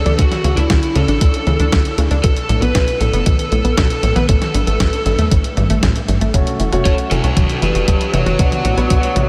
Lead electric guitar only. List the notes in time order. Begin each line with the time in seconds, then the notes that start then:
Already playing: A4
0.19 F#4
0.57 E4
0.95 A4
2.23 A4
2.62 B4
3.00 A4
3.78 A4
4.16 B4
4.29 A4
6.85 A4 C#5
7.11 F#4 A4
7.63 G4 B4
8.14 F#4 C#5